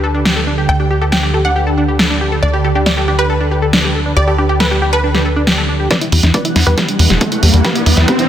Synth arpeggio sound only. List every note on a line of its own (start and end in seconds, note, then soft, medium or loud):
0.04 0.07 A4 medium
0.14 0.20 D4 medium
0.25 0.34 G4 medium
0.36 0.40 A4 medium
0.47 0.53 D4 medium
0.58 0.67 G4 medium
0.69 0.72 A4 medium
0.80 0.86 D4 medium
0.91 1.00 G4 medium
1.02 1.05 A4 medium
1.12 1.18 D4 medium
1.23 1.32 G4 medium
1.34 1.38 A4 medium
1.45 1.51 D4 medium
1.56 1.65 G4 medium
1.67 1.70 A4 medium
1.78 1.84 D4 medium
1.88 1.97 G4 medium
1.99 2.03 A4 medium
2.10 2.16 D4 medium
2.21 2.30 G4 medium
2.32 2.36 A4 medium
2.43 2.49 D4 medium
2.54 2.63 G4 medium
2.64 2.68 A4 medium
2.75 2.81 D4 medium
2.86 2.95 G4 medium
2.97 3.01 A4 medium
3.08 3.14 D4 medium
3.19 3.28 G4 medium
3.30 3.33 A4 medium
3.41 3.47 D4 medium
3.51 3.60 G4 medium
3.62 3.66 A4 medium
3.73 3.79 D4 medium
3.84 3.93 G4 medium
3.95 3.99 A4 medium
4.06 4.12 D4 medium
4.17 4.26 G4 medium
4.27 4.31 A4 medium
4.38 4.44 D4 medium
4.49 4.58 G4 medium
4.60 4.64 A4 medium
4.71 4.77 D4 medium
4.82 4.91 G4 medium
4.93 4.96 A4 medium
5.04 5.10 D4 medium
5.15 5.24 G4 medium
5.25 5.29 A4 medium
5.36 5.42 D4 medium
5.47 5.56 G4 medium
5.58 5.62 A4 medium
5.69 5.75 D4 medium
5.80 5.89 G4 medium
5.90 5.97 D4 medium
6.01 6.10 E4 medium
6.12 6.16 G4 medium
6.23 6.29 D4 medium
6.34 6.43 E4 medium
6.45 6.49 G4 medium
6.56 6.62 D4 medium
6.67 6.76 E4 medium
6.78 6.81 G4 medium
6.88 6.94 D4 medium
6.99 7.08 E4 medium
7.10 7.14 G4 medium
7.21 7.27 D4 medium
7.32 7.41 E4 medium
7.43 7.46 G4 medium
7.54 7.60 D4 medium
7.65 7.74 E4 medium
7.76 7.79 G4 medium
7.86 7.92 D4 medium
7.97 8.06 E4 medium
8.08 8.12 G4 medium
8.19 8.25 D4 medium